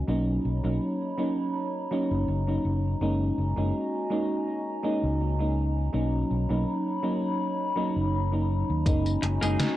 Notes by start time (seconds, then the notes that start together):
0.07 B1 F#3 A#3 C#4 D#4 C#5 A#5 B5
0.45 B1
0.64 B1 F#3 A#3 C#4 D#4
1.18 F#3 A#3 C#4 D#4
1.91 F#3 A#3 C#4 D#4
2.11 F#1
2.28 F#1
2.47 F#3 A#3 C#4 D#4
2.65 F#1
3.00 F#1 G#3 A#3 C#4 D#4 F#4 D#5 G#5
3.38 F#1
3.56 F#1 G#3 A#3 C#4 D#4
4.10 G#3 A#3 C#4 D#4
4.83 G#3 A#3 C#4 D#4
5.04 C#2
5.39 G#3 A#3 C#4 D#4
5.93 B1 F#3 A#3 C#4 D#4 C#5 B5
6.31 B1
6.49 B1 F#3 A#3 C#4 D#4
7.03 F#3 A#3 C#4 D#4
7.76 F#3 A#3 C#4 D#4
7.96 F#1
8.32 F#3 A#3 C#4 D#4
8.70 D#2
8.86 F#1 G#3 A#3 C#4 D#4 F#4 D#5 G#5 A#5, kick, closed hi-hat, tambourine
9.06 closed hi-hat, tambourine
9.22 F#1, muted clean electric guitar stroke, closed hi-hat
9.41 F#1 G#3 A#3 C#4 D#4 G#4, closed hi-hat, tambourine
9.60 snare, closed hi-hat, tambourine